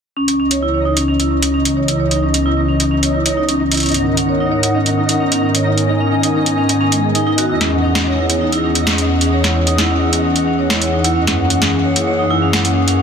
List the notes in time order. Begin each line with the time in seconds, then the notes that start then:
0.17 C#2 C#3 E3 B3 C#4 D#4 D#5
0.28 C#4, closed hi-hat
0.40 C#4
0.51 C#5, closed hi-hat
0.62 E4
0.74 C#5
0.85 D#4
0.97 C#4, closed hi-hat
1.08 C#4
1.20 E4, closed hi-hat
1.31 C#4
1.42 C#4, closed hi-hat
1.54 C#4
1.65 C#4, closed hi-hat
1.77 C#5
1.88 E4, closed hi-hat
2.00 C#5
2.11 D#4, closed hi-hat
2.23 C#4
2.34 C#4, closed hi-hat
2.46 E4
2.57 C#4
2.69 C#4
2.80 C#4, closed hi-hat
2.91 C#4
3.03 C#5, closed hi-hat
3.14 E4
3.26 C#5, closed hi-hat
3.37 D#4
3.49 C#4, closed hi-hat
3.60 C#4
3.72 E4, closed hi-hat
3.74 closed hi-hat
3.77 closed hi-hat
3.80 G#2 D#3 C#4 A#4 F#5, closed hi-hat
3.83 closed hi-hat
3.86 closed hi-hat
3.89 closed hi-hat
3.92 closed hi-hat
3.94 C#4, closed hi-hat
4.06 C#4
4.17 C#4, closed hi-hat
4.29 C#5
4.40 D#4
4.52 C#5
4.63 D#4, closed hi-hat
4.75 C#4
4.86 C#4, closed hi-hat
4.98 D#4
5.09 C#4, closed hi-hat
5.20 C#4
5.32 C#4, closed hi-hat
5.43 C#4
5.55 C#5, closed hi-hat
5.66 D#4 G#5
5.78 C#5, closed hi-hat
5.89 D#4
6.01 C#4
6.12 C#4
6.23 D#4, closed hi-hat
6.35 C#4
6.46 C#4, closed hi-hat
6.58 C#4
6.69 C#4, closed hi-hat
6.81 C#4
6.92 G#3, closed hi-hat
7.04 G#4
7.15 D#4, closed hi-hat
7.27 D#4
7.38 F#4, closed hi-hat
7.49 E2 E3 E4 G#4 F#5
7.61 C#4, snare, closed hi-hat
7.72 C#4
7.84 C#4
7.95 C#4, snare
8.07 C#5
8.18 E4
8.30 C#5, closed hi-hat
8.41 D#4
8.53 E4, closed hi-hat
8.64 C#4
8.75 E4, closed hi-hat
8.87 C#4, snare
8.98 C#4, closed hi-hat
9.10 C#4
9.21 C#4, closed hi-hat
9.33 C#5
9.44 E4, snare, closed hi-hat
9.56 C#5
9.67 D#4, closed hi-hat
9.78 E4, snare
9.90 C#4
10.02 E4
10.13 C#4, closed hi-hat
10.24 C#4
10.36 C#4, closed hi-hat
10.47 C#4
10.59 C#5
10.70 E4, snare
10.82 C#5, closed hi-hat
10.93 D#4
11.04 E4, closed hi-hat
11.16 F#2 A#3 C#4 G#4
11.27 E4, snare, closed hi-hat
11.39 C#4
11.50 C#4, closed hi-hat
11.62 C#4, snare
11.73 C#4
11.85 C#5
11.96 E4, closed hi-hat
12.07 C#5
12.19 D#4
12.30 E4
12.42 C#4
12.53 E4, snare
12.65 C#4, closed hi-hat
12.76 C#4
12.88 C#4, closed hi-hat
12.99 C#4